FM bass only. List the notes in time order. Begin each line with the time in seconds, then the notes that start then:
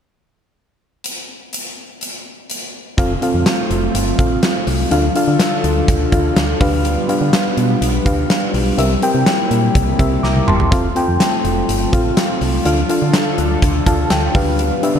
2.98 F1
3.34 F2
3.71 F1
3.95 G1
4.19 A1
4.67 C2
4.91 D2
5.28 D3
5.64 D2
5.88 D2
6.12 D2
6.36 D2
6.61 D2
7.21 D3
7.57 B2
7.82 B1
8.06 D2
8.54 B1
8.78 C2
9.14 C3
9.51 A#2
9.75 C2
9.99 C2
10.24 C2
10.48 G1
10.72 F1
11.08 F2
11.45 F1
11.69 G1
11.93 A1
12.41 C2
12.66 D2
13.02 D3
13.38 D2
13.62 D2
13.87 D2
14.11 D2
14.35 D2
14.95 D3